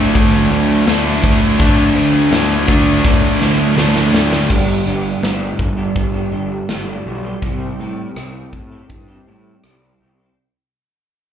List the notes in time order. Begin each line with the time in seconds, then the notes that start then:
Already playing: D3 F#3 A3 D4
0.15 D2, kick, open hi-hat
0.51 D2
0.87 D2 D3 F#3 A3 D4, snare, open hi-hat
1.23 D2, kick
1.59 D2 D3 F#3 A3 D4, kick, open hi-hat
1.95 D2
2.31 D2, snare, open hi-hat
2.67 D2 D3 F#3 A3 D4, kick
3.05 D2, kick, snare
3.41 D2, snare
3.76 D2 D3 F#3 A3 D4, snare
3.96 snare
4.13 D2, snare
4.33 snare
4.49 G1 G2 D3 G3 B3 D4 G4, kick, crash
4.85 G1 G3 B3 D4 G4
5.21 G1 G2 D3 G3 B3 D4 G4, snare, open hi-hat
5.58 G1, muted clean electric guitar stroke, kick
5.77 G3 B3 D4 G4
5.95 G1, kick, open hi-hat
6.13 G3 B3 D4 G4
6.31 G1 G3 B3 D4 G4
6.68 G1 G2 D3 G3 B3 D4 G4, snare, open hi-hat
6.86 G3 B3 D4 G4
7.04 B1 G3 B3 D4 G4
7.23 G3 B3 D4 G4
7.42 C2 C3 G3 C4 E4 G4, kick, open hi-hat
7.78 A2 G3 C4 E4 G4
8.15 C2 C3 G3 C4 E4 G4, cross-stick, open hi-hat
8.52 A2, muted clean electric guitar stroke, kick
8.71 C4 E4 G4
8.89 G2, kick, open hi-hat
9.08 C4 E4 G4
9.26 A2 G3 C4 E4 G4
9.63 C2 C3 G3 C4 E4 G4, cross-stick, open hi-hat
9.82 C4 E4 G4
10.00 C2 G3 C4 E4 G4
10.19 C4 E4 G4